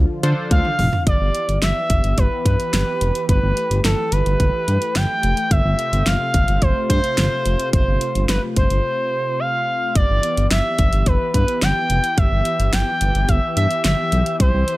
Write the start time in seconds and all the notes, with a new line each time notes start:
Already playing: D3 F3 F4
0.23 D3 D4 F4 A4 C5, closed hi-hat
0.51 D2 F5, kick, closed hi-hat, high tom
0.65 mid tom
0.79 F1, mid tom, open hi-hat
0.93 floor tom
1.07 G1 E3 B3 G4 D5, kick, closed hi-hat
1.21 G1
1.35 closed hi-hat
1.48 G1, closed hi-hat
1.62 G1 E5, snare, closed hi-hat
1.90 G1, kick, closed hi-hat
2.04 G1, closed hi-hat
2.18 G1 B4, kick, closed hi-hat
2.46 G2 B4, kick, closed hi-hat
2.60 closed hi-hat
2.73 G1, snare, closed hi-hat
3.01 F1, closed hi-hat
3.15 closed hi-hat
3.29 G1 A3 B4, kick, closed hi-hat
3.43 G1
3.57 closed hi-hat
3.71 G1, closed hi-hat
3.84 G1 A4, snare, closed hi-hat
4.12 G1 B4, closed hi-hat
4.26 G1, closed hi-hat
4.40 G1, kick, closed hi-hat
4.68 G2, closed hi-hat
4.82 closed hi-hat
4.95 G1 G5, snare, closed hi-hat
5.23 F1, closed hi-hat
5.37 closed hi-hat
5.51 G1 C3 F4 E5, kick, closed hi-hat
5.65 G1
5.79 closed hi-hat
5.93 G1, closed hi-hat
6.06 G1 F5, snare, closed hi-hat
6.34 G1, kick, closed hi-hat
6.48 G1, closed hi-hat
6.62 G1 C5, kick, closed hi-hat
6.90 G2 C5, kick, closed hi-hat
7.04 closed hi-hat
7.18 G1, snare, closed hi-hat
7.46 F1, closed hi-hat
7.60 closed hi-hat
7.73 G1 C5, kick, closed hi-hat
7.87 G1
8.01 closed hi-hat
8.15 G1, closed hi-hat
8.29 G1 B4, snare, closed hi-hat
8.56 G1 C5, kick, closed hi-hat
8.70 G1, closed hi-hat
9.40 F5
9.95 G1 E3 B3 G4 D5, kick, closed hi-hat
10.10 G1
10.23 closed hi-hat
10.37 G1, closed hi-hat
10.51 G1 E5, snare, closed hi-hat
10.79 G1, kick, closed hi-hat
10.93 G1, closed hi-hat
11.06 G1 B4, kick, closed hi-hat
11.34 G2 B4, kick, closed hi-hat
11.48 closed hi-hat
11.62 G1 G5, snare, closed hi-hat
11.90 F1, closed hi-hat
12.04 closed hi-hat
12.18 G1 E5, kick, closed hi-hat
12.32 G1
12.45 closed hi-hat
12.59 G1, closed hi-hat
12.73 G1 G5, snare, closed hi-hat
13.01 G1, closed hi-hat
13.15 G1, closed hi-hat
13.29 G1 E5, kick, closed hi-hat
13.57 G2 E5, closed hi-hat
13.71 closed hi-hat
13.84 G1 E5, snare, closed hi-hat
14.12 B1, closed hi-hat
14.26 closed hi-hat
14.40 C2 C4 C5, kick, closed hi-hat
14.54 C2
14.68 closed hi-hat